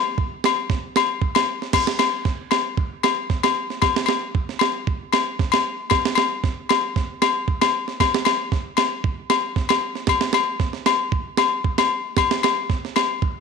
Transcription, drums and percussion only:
0.18 kick medium
0.44 snare medium
0.44 low agogo medium
0.70 kick medium
0.70 snare soft
0.96 snare medium
0.96 low agogo medium
1.22 kick medium
1.35 snare medium
1.35 low agogo medium
1.62 snare soft
1.73 kick medium
1.73 snare medium
1.73 crash medium
1.73 low agogo medium
1.87 snare medium
1.99 snare medium
1.99 low agogo medium
2.25 kick medium
2.25 snare soft
2.51 snare medium
2.51 low agogo medium
2.77 kick medium
3.03 snare medium
3.03 low agogo medium
3.30 kick medium
3.30 snare soft
3.43 snare medium
3.43 low agogo medium
3.70 snare soft
3.82 kick medium
3.82 snare medium
3.82 low agogo medium
3.96 snare medium
4.06 snare medium
4.06 low agogo medium
4.35 kick medium
4.49 snare soft
4.59 snare medium
4.59 low agogo medium
4.87 kick medium
5.13 snare medium
5.13 low agogo medium
5.39 kick medium
5.39 snare soft
5.52 snare medium
5.52 low agogo medium
5.90 kick medium
5.90 snare medium
5.90 low agogo medium
6.05 snare medium
6.15 snare medium
6.15 low agogo medium
6.44 kick medium
6.44 snare soft
6.69 snare medium
6.69 low agogo medium
6.96 kick medium
6.96 snare soft
7.22 snare medium
7.22 low agogo medium
7.48 kick medium
7.61 snare medium
7.61 low agogo medium
7.88 snare soft
8.00 kick medium
8.00 snare medium
8.00 low agogo medium
8.14 snare medium
8.25 snare medium
8.25 low agogo medium
8.52 kick medium
8.52 snare soft
8.77 snare medium
8.77 low agogo medium
9.04 kick medium
9.30 snare medium
9.30 low agogo medium
9.56 kick medium
9.56 snare soft
9.69 snare medium
9.69 low agogo medium
9.95 snare soft
10.07 kick medium
10.07 snare medium
10.07 low agogo medium
10.21 snare medium
10.33 snare medium
10.33 low agogo medium
10.60 kick medium
10.60 snare soft
10.73 snare soft
10.86 snare medium
10.86 low agogo medium
11.12 kick medium
11.37 snare medium
11.37 low agogo medium
11.65 kick medium
11.78 snare medium
11.78 low agogo medium
12.17 kick medium
12.17 snare medium
12.17 low agogo medium
12.31 snare medium
12.43 snare medium
12.43 low agogo medium
12.70 kick medium
12.70 snare soft
12.85 snare soft
12.96 snare medium
12.96 low agogo medium
13.22 kick medium

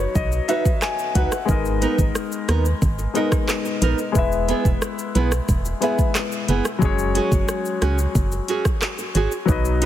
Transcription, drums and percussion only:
0.15 kick loud
0.15 shaker medium
0.32 shaker medium
0.49 closed hi-hat medium
0.49 shaker medium
0.65 kick medium
0.65 shaker medium
0.82 cross-stick medium
0.82 clap medium
0.82 shaker medium
0.99 shaker soft
1.15 kick loud
1.15 closed hi-hat medium
1.15 shaker medium
1.32 cross-stick loud
1.32 shaker medium
1.49 kick loud
1.49 shaker medium
1.65 shaker medium
1.82 closed hi-hat medium
1.82 shaker medium
1.98 kick medium
1.98 shaker medium
2.15 cross-stick medium
2.15 shaker medium
2.32 shaker medium
2.49 cross-stick loud
2.49 closed hi-hat medium
2.49 shaker medium
2.65 shaker medium
2.82 kick loud
2.82 shaker medium
2.99 shaker medium
3.15 closed hi-hat medium
3.15 shaker medium
3.32 kick medium
3.32 cross-stick loud
3.32 shaker medium
3.49 cross-stick medium
3.49 clap medium
3.49 shaker medium
3.65 shaker medium
3.82 closed hi-hat medium
3.82 shaker medium
3.98 shaker medium
4.15 kick loud
4.15 shaker medium
4.32 shaker medium
4.49 closed hi-hat medium
4.49 shaker medium
4.65 kick medium
4.65 shaker medium
4.82 cross-stick medium
4.82 shaker medium
4.99 shaker medium
5.15 closed hi-hat medium
5.15 shaker soft
5.32 cross-stick medium
5.32 shaker medium
5.49 kick loud
5.49 shaker medium
5.65 shaker medium
5.82 closed hi-hat medium
5.82 shaker medium
5.99 kick medium
5.99 shaker medium
6.15 cross-stick medium
6.15 clap loud
6.15 shaker medium
6.32 shaker medium
6.49 closed hi-hat medium
6.49 shaker medium
6.65 cross-stick loud
6.65 shaker medium
6.82 kick loud
6.82 shaker medium
6.99 shaker medium
7.15 closed hi-hat medium
7.15 shaker medium
7.32 kick medium
7.32 shaker medium
7.49 cross-stick medium
7.49 shaker medium
7.65 shaker medium
7.82 cross-stick loud
7.82 closed hi-hat medium
7.82 shaker medium
7.98 shaker medium
8.15 kick loud
8.15 shaker medium
8.32 shaker medium
8.48 closed hi-hat medium
8.48 shaker medium
8.65 kick medium
8.65 cross-stick medium
8.65 shaker medium
8.82 cross-stick medium
8.82 clap medium
8.82 shaker medium
8.98 shaker medium
9.15 closed hi-hat medium
9.15 shaker medium
9.32 shaker medium
9.48 kick loud
9.48 shaker medium
9.65 shaker medium
9.82 closed hi-hat medium
9.82 shaker soft

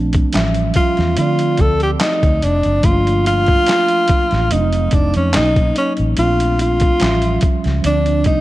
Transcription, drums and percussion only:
0.13 kick medium
0.13 closed hi-hat soft
0.33 snare medium
0.33 clap medium
0.33 closed hi-hat medium
0.54 closed hi-hat soft
0.74 kick medium
0.74 closed hi-hat medium
0.97 snare soft
0.97 closed hi-hat soft
1.17 closed hi-hat medium
1.39 closed hi-hat soft
1.57 kick medium
1.57 closed hi-hat soft
1.80 closed hi-hat soft
2.00 snare loud
2.00 clap medium
2.00 closed hi-hat medium
2.23 kick medium
2.23 closed hi-hat soft
2.42 closed hi-hat medium
2.63 closed hi-hat soft
2.83 kick medium
2.83 closed hi-hat medium
3.07 closed hi-hat soft
3.26 closed hi-hat medium
3.46 kick medium
3.46 closed hi-hat soft
3.66 snare medium
3.66 clap medium
3.66 closed hi-hat medium
3.88 closed hi-hat soft
4.08 kick medium
4.08 closed hi-hat medium
4.31 snare soft
4.31 closed hi-hat soft
4.51 closed hi-hat medium
4.73 closed hi-hat soft
4.91 kick medium
4.91 closed hi-hat medium
5.14 closed hi-hat soft
5.33 snare loud
5.33 clap medium
5.33 closed hi-hat medium
5.56 kick medium
5.56 closed hi-hat soft
5.76 closed hi-hat medium
5.97 closed hi-hat soft
6.17 closed hi-hat medium
6.40 closed hi-hat soft
6.59 closed hi-hat medium
6.80 kick medium
6.80 closed hi-hat soft
7.00 snare medium
7.00 clap medium
7.00 closed hi-hat medium
7.22 closed hi-hat soft
7.41 kick medium
7.41 closed hi-hat medium
7.64 snare soft
7.64 closed hi-hat soft
7.84 closed hi-hat medium
8.06 closed hi-hat soft
8.24 kick medium
8.24 closed hi-hat soft

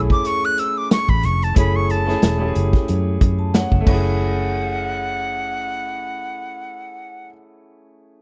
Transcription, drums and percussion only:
0.10 kick medium
0.25 closed hi-hat medium
0.58 closed hi-hat medium
0.91 snare loud
0.91 closed hi-hat medium
1.09 kick medium
1.23 closed hi-hat medium
1.42 closed hi-hat soft
1.56 kick loud
1.56 closed hi-hat medium
1.90 closed hi-hat medium
2.08 snare soft
2.22 snare loud
2.22 closed hi-hat medium
2.55 closed hi-hat medium
2.73 kick medium
2.73 snare soft
2.88 closed hi-hat medium
3.21 kick loud
3.21 closed hi-hat medium
3.54 snare loud
3.54 closed hi-hat medium
3.72 kick medium
3.87 kick loud
3.87 crash medium

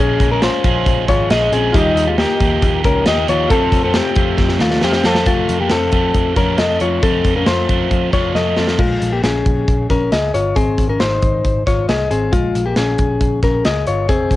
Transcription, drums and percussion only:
0.20 kick medium
0.20 closed hi-hat medium
0.42 snare loud
0.42 closed hi-hat medium
0.64 kick medium
0.64 closed hi-hat medium
0.86 kick medium
0.86 closed hi-hat medium
1.08 kick medium
1.08 snare soft
1.08 closed hi-hat medium
1.30 snare loud
1.30 closed hi-hat medium
1.53 closed hi-hat medium
1.74 kick loud
1.74 closed hi-hat medium
1.97 closed hi-hat medium
2.18 snare loud
2.18 closed hi-hat medium
2.40 kick loud
2.40 closed hi-hat medium
2.62 kick medium
2.62 closed hi-hat medium
2.84 kick medium
2.84 closed hi-hat medium
3.06 snare loud
3.06 closed hi-hat medium
3.28 closed hi-hat medium
3.50 kick loud
3.50 closed hi-hat medium
3.72 kick medium
3.72 closed hi-hat medium
3.94 snare loud
3.94 closed hi-hat medium
4.16 kick loud
4.16 closed hi-hat medium
4.38 kick medium
4.38 snare medium
4.49 snare medium
4.59 snare medium
4.71 snare medium
4.81 snare medium
4.93 snare medium
5.04 snare medium
5.15 snare medium
5.26 kick loud
5.26 closed hi-hat medium
5.49 closed hi-hat medium
5.70 snare loud
5.70 closed hi-hat medium
5.92 kick medium
5.92 closed hi-hat medium
6.15 kick medium
6.15 closed hi-hat medium
6.36 kick medium
6.36 snare soft
6.36 closed hi-hat medium
6.58 snare loud
6.58 closed hi-hat medium
6.80 closed hi-hat medium
7.03 kick loud
7.03 closed hi-hat medium
7.24 kick medium
7.24 closed hi-hat medium
7.46 snare loud
7.46 closed hi-hat medium
7.69 kick medium
7.69 closed hi-hat medium
7.91 kick medium
7.91 closed hi-hat medium
8.13 kick medium
8.13 snare soft
8.13 closed hi-hat medium
8.35 snare soft
8.57 snare medium
8.68 snare medium
8.79 kick medium
8.79 crash medium
9.02 closed hi-hat medium
9.24 snare loud
9.24 closed hi-hat medium
9.46 kick medium
9.46 closed hi-hat medium
9.68 kick medium
9.68 closed hi-hat medium
9.90 kick medium
9.90 snare soft
9.90 closed hi-hat medium
10.12 snare loud
10.12 closed hi-hat medium
10.34 closed hi-hat medium
10.56 kick medium
10.56 closed hi-hat medium
10.78 kick medium
10.78 closed hi-hat medium
11.00 snare loud
11.00 closed hi-hat medium
11.22 kick medium
11.22 closed hi-hat medium
11.45 kick medium
11.45 closed hi-hat medium
11.67 kick medium
11.67 snare soft
11.67 closed hi-hat medium
11.89 snare loud
11.89 closed hi-hat medium
12.11 closed hi-hat medium
12.33 kick loud
12.33 closed hi-hat medium
12.55 closed hi-hat medium
12.76 snare loud
12.76 closed hi-hat medium
12.98 kick medium
12.98 closed hi-hat medium
13.21 kick medium
13.21 closed hi-hat medium
13.43 kick medium
13.43 snare soft
13.43 closed hi-hat medium
13.65 snare loud
13.65 closed hi-hat medium
13.87 closed hi-hat medium
14.09 kick loud
14.09 closed hi-hat medium
14.31 kick medium
14.31 closed hi-hat medium

